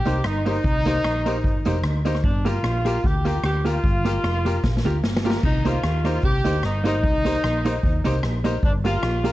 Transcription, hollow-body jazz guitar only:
0.06 A#3 D#4 G4
0.46 A#3 D#4 G4
0.86 A#3 D#4 G4
1.04 muted hollow-body jazz guitar stroke
1.26 A#3 D#4 G4
1.66 A#3 D#4 G4
2.05 A#3 D#4 G4
2.45 A#3 F4 G4
2.63 muted hollow-body jazz guitar stroke
2.85 A#3 F4 G4
3.25 A#3 F4 G4
3.65 A#3 F4 G4
4.05 A#3 F4 G4
4.23 muted hollow-body jazz guitar stroke
4.45 A#3 F4 G4
4.85 A#3 F4 G4
5.25 A#3 F4 G4
5.65 A#3 D#4 G4
5.83 muted hollow-body jazz guitar stroke
6.04 A#3 D#4 G4
6.44 A#3 D#4 G4
6.84 A#3 D#4 G4
7.25 A#3 D#4 G4
7.44 muted hollow-body jazz guitar stroke
7.65 A#3 D#4 G4
8.04 A#3 D#4 G4
8.44 A#3 D#4 G4
8.85 A#3 F4 G4
9.03 muted hollow-body jazz guitar stroke
9.24 A#3 F4 G4

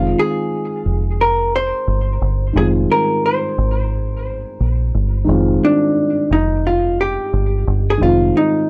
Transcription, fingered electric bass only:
Already playing: F1
0.86 F1
1.88 G1
2.21 G1
2.56 F1
3.58 G#1
4.60 A#1
4.95 G1
5.28 F1
6.31 F1
7.33 G1
7.67 G1
8.01 F1

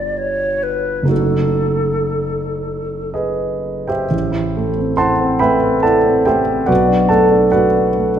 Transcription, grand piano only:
Already playing: G1 G3 D4 F#4 B4
1.02 F#1 A3 D#4 F#4
1.08 A4
3.14 G#4 B4 D#5
3.87 G4 C5 E5 G5
4.11 A1
4.32 E4
4.56 A3
4.78 C4
4.97 E4 C5 F#5 A5 C6
5.21 C4
5.39 A3 B4 E5 G5 B5
5.64 C4
5.83 E4 A4 D5 F#5 A5
6.06 C4
6.25 A3 G4 C5 E5 G5
6.50 C4
6.66 B1 F#4 B4 D5 F#5
6.88 D4
7.09 A3 A4 D5 F#5 A5
7.32 D4
7.52 A3 F#4 B4 D5 F#5
7.75 D4
7.96 A3

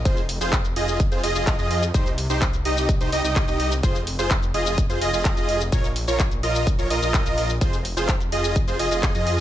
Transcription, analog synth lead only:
0.05 C5
0.41 C5
0.76 D#5
1.12 C5
1.24 D#5
1.35 D#5
1.59 D#5
1.94 C5
2.30 C5
2.65 D#5
3.01 C5
3.13 D#5
3.24 D#5
3.48 D#5
3.83 C5
4.19 C5
4.54 D#5
4.90 C5
5.02 D#5
5.13 D#5
5.37 D#5
5.72 C#5
6.08 C#5
6.43 D#5
6.79 C#5
6.90 D#5
7.02 D#5
7.26 D#5
7.61 C5
7.97 C5
8.32 D#5
8.68 C5
8.79 D#5
8.91 D#5
9.15 D#5

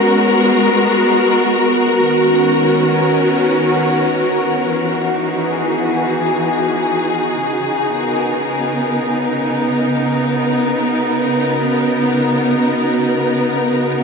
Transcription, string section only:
Already playing: G#3 B3 C#4 F#4 A#4
2.06 D#3
2.24 C#4
4.71 E3
4.90 D#4
5.42 G#4
7.43 C#3
7.87 B3
7.93 A#4

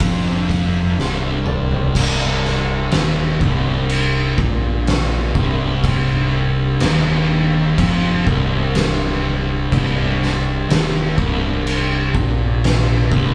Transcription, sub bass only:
0.00 F1
0.98 C1
1.95 C1
2.93 D#1
3.41 C1
4.38 A#1
5.35 C1
6.82 D#1
7.78 F1
8.27 C1
9.73 C1
10.70 D#1
11.18 C1
12.15 A#1
13.12 C1

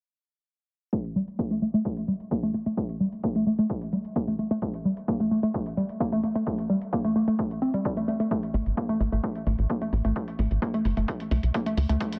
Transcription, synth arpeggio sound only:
0.93 A3
1.16 G3
1.39 A#3
1.51 A3
1.62 A3
1.74 A3
1.85 A3
2.08 G3
2.31 A#3
2.43 A3
2.54 A3
2.66 A3
2.77 A3
3.00 G3
3.24 A#3
3.36 A3
3.47 A3
3.59 A3
3.70 A3
3.93 G3
4.16 A#3
4.28 A3
4.39 A3
4.51 A3
4.62 A3
4.85 G3
5.08 A#3
5.20 A3
5.31 A3
5.43 A3
5.54 A3
5.77 G3
6.00 A#3
6.12 A3
6.24 A3
6.35 A3
6.47 A3
6.70 G3
6.93 A#3
7.05 A3
7.16 A3
7.28 A3
7.39 A3
7.62 C4
7.74 G3
7.85 G3
7.97 A3
8.08 A3
8.20 A3
8.31 A3
8.54 A3
8.77 A#3
8.89 A3
9.00 A3
9.12 A3
9.24 A3
9.47 A3
9.70 A#3
9.82 A3
9.93 A3
10.05 A3
10.16 A3
10.39 A3
10.62 A#3
10.74 A3
10.85 A3
10.97 A3
11.08 A3
11.31 A3
11.54 A#3
11.66 A3
11.77 A3
11.89 A3
12.00 A3

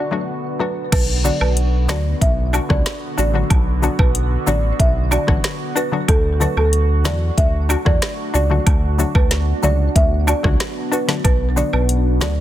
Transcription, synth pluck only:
0.11 F#3 A3 D4 F#4
0.59 F#3 A3 D4 F#4
1.24 D3 F#3 B3 D4 F#4
1.89 D3 F#3 B3 D4 F#4
2.53 D4 F#4
2.69 D3 F#3 B3 D4 F#4
3.18 D4 F#4
3.34 D3 F#3 B3 D4 F#4
3.82 D3 F#3 B3 D4 F#4
4.47 D3 F#3 B3 D4 F#4
5.11 D4 F#4
5.27 D3 F#3 B3 D4 F#4
5.76 D4 F#4
5.92 D3 F#3 B3 D4 F#4
6.40 D3 F#3 A3 D4 F#4
7.05 D3 F#3 A3 D4 F#4
7.69 D4 F#4
7.85 D3 F#3 A3 D4 F#4
8.34 D4 F#4
8.50 D3 F#3 A3 D4 F#4
8.98 D3 F#3 A3 D4 F#4
9.63 D3 F#3 A3 D4 F#4
10.27 D4 F#4
10.43 D3 F#3 A3 D4 F#4
10.92 D4 F#4
11.08 D3 F#3 A3 D4 F#4
11.56 D3 F#3 B3 D4 F#4
12.21 D3 F#3 B3 D4 F#4

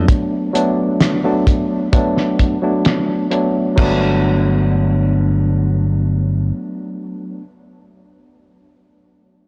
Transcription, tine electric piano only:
Already playing: F#3 A3 B3 D4
0.53 F#3 A3 B3 D4
1.24 F#3 A3 B3 D4
1.92 F#3 A3 B3 D4
2.62 F#3 A3 B3 D4
3.31 F#3 A3 B3 D4
3.76 F#3 A3 B3
3.80 D4

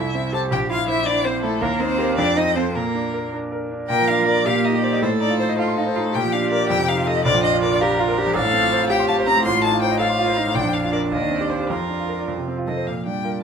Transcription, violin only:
Already playing: E5
0.34 A5
0.52 G5
0.70 F5
0.89 E5
1.06 D5
1.25 C5
1.43 A4
1.61 A#4
1.80 C5
2.17 D5
2.37 D#5
2.55 C5
2.75 A#4
3.89 G5
4.08 F5
4.27 D5
4.46 F5
4.64 D#5
4.83 D5
5.02 C5
5.21 D5
5.39 C5
5.58 A4
6.14 G5
6.33 F5
6.51 D5
6.69 G5
6.88 F5
7.07 D#5
7.25 D5
7.43 D#5
7.62 D5
7.81 A#4
8.35 F5
8.90 G5
9.08 A5
9.26 A#5
9.45 C6
9.64 A5
9.82 G5
10.00 F5
10.55 G5
10.73 F5
10.93 D5
11.12 D#5
11.50 C5
11.69 A#4
12.67 D#5
12.87 F5
13.06 G5

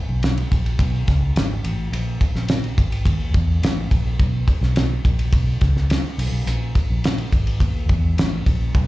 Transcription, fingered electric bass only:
0.09 B1
0.52 A#1
0.79 B1
1.08 C#2
1.36 G#1
1.64 A1
1.92 A#1
2.35 A#1
2.78 G#1
3.06 D#2
3.34 E2
3.63 A1
3.91 A#1
4.19 B1
4.61 B1
5.05 A#1
5.33 B1
5.62 C#2
6.18 B1
6.32 B1
6.46 A#1
6.90 A#1
7.32 G#1
7.61 D#2
7.89 E2
8.17 A1
8.46 A#1
8.75 B1

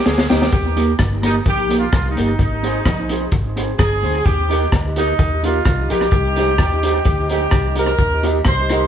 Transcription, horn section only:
0.05 G#4
0.29 G4
0.52 G4
1.26 D#4
1.48 G4
1.79 F4
2.11 D#4
2.42 D#4
3.79 G#4
4.26 G4
4.98 D#4
5.45 F4
5.91 G4
7.31 G4
7.78 A#4
8.48 C5

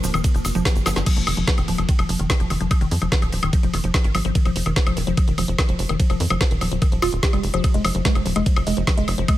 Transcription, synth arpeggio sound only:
0.04 F3
0.14 D#3
0.24 F3
0.35 F3
0.55 F3
0.65 G4
0.86 F3
0.96 F3
1.06 F3
1.17 F3
1.27 D#3
1.37 F3
1.48 F3
1.58 D#3
1.68 F3
1.78 F3
1.89 D#3
1.99 F3
2.09 F3
2.19 D#3
2.30 F3
2.40 F3
2.50 D#3
2.61 F3
2.71 F3
2.81 D#3
2.91 F3
3.02 F3
3.12 D#3
3.22 F3
3.32 F3
3.43 D#3
3.53 F3
3.63 F3
3.74 D#3
3.84 F3
3.94 F3
4.04 D#3
4.15 F3
4.25 F3
4.35 D#3
4.45 F3
4.56 F3
4.66 D#3
4.76 F3
4.87 F3
4.97 D#3
5.07 F3
5.17 F3
5.28 D#3
5.38 F3
5.48 F3
5.58 D#3
5.69 F3
5.79 F3
5.89 D#3
6.00 F3
6.10 F3
6.20 D#3
6.30 F3
6.41 F3
6.51 D#3
6.61 F3
6.71 F3
6.82 D#3
6.92 F3
7.02 F4
7.23 G4
7.33 G3
7.54 F3
7.64 F3
7.74 G#3
7.85 F3
7.95 F3
8.05 G#3
8.15 F3
8.26 F3
8.36 G#3
8.46 F3
8.56 F3
8.67 G#3
8.77 F3
8.87 F3
8.97 G#3
9.08 F3
9.18 F3
9.28 G#3

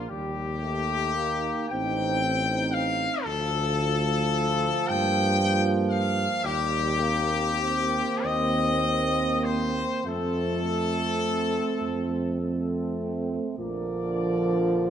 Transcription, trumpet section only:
0.09 G4
1.68 G5
2.72 F5
3.23 A4
4.88 G5
5.91 F5
6.44 G4
8.23 D#5
9.44 C5
10.06 A4
13.58 D5

